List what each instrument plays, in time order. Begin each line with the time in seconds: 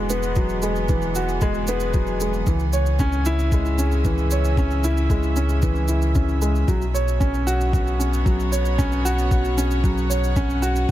Already playing: sub bass E1, upright piano E3 F#3 G#3 B3 F#4, string section E3 B3 G#4 F#5
0.10 upright piano B3, shaker
0.23 shaker
0.36 upright piano F#3, kick, shaker
0.49 shaker
0.62 upright piano G#3, shaker
0.76 shaker
0.88 upright piano E3, kick, shaker
1.02 shaker
1.15 upright piano F#4, shaker
1.29 shaker
1.41 upright piano G#3, kick, shaker
1.54 shaker
1.67 upright piano B3, shaker
1.80 shaker
1.93 upright piano F#3, kick, shaker
2.07 shaker
2.20 upright piano G#3, shaker
2.33 shaker
2.47 sub bass C#2, string section C#3, upright piano E3, kick, shaker
2.60 shaker
2.73 upright piano C#5, shaker
2.82 string section C#4
2.86 shaker
2.99 upright piano C#4, kick, shaker
3.13 shaker
3.22 string section E5, shaker
3.26 upright piano E4
3.39 shaker
3.52 upright piano G#3, kick, shaker
3.66 shaker
3.79 upright piano C#4, shaker
3.92 shaker
4.05 upright piano E3, kick, shaker
4.18 shaker
4.31 upright piano C#5, shaker
4.45 shaker
4.57 upright piano C#4, kick, shaker
4.71 shaker
4.84 upright piano E4, shaker
4.97 shaker
5.10 upright piano G#3, kick, shaker
5.23 shaker
5.36 upright piano C#4, shaker
5.49 shaker
5.62 upright piano E3, kick, shaker
5.75 shaker
5.88 upright piano E4, shaker
6.02 shaker
6.15 upright piano C#4, kick, shaker
6.28 shaker
6.42 upright piano G#3, shaker
6.55 shaker
6.67 sub bass B1, string section B2, upright piano F#3, kick, shaker
6.82 shaker
6.92 string section B3, upright piano C#5, shaker
7.08 shaker
7.20 upright piano C#4, kick, shaker
7.34 shaker
7.47 upright piano F#4, string section C#5, shaker
7.61 shaker
7.69 string section F#5
7.73 upright piano F#4, kick, shaker
7.87 shaker
7.99 upright piano C#4, shaker
8.14 shaker
8.25 upright piano F#3, kick, shaker
8.40 shaker
8.52 upright piano C#5, shaker
8.66 shaker
8.78 upright piano C#4, kick, shaker
8.92 shaker
9.05 upright piano F#4, shaker
9.18 shaker
9.31 upright piano F#4, kick, shaker
9.45 shaker
9.57 upright piano C#4, shaker
9.71 shaker
9.84 upright piano F#3, kick, shaker
9.98 shaker
10.10 upright piano C#5, shaker
10.24 shaker
10.36 upright piano C#4, kick, shaker
10.50 shaker
10.62 upright piano F#4, shaker
10.76 shaker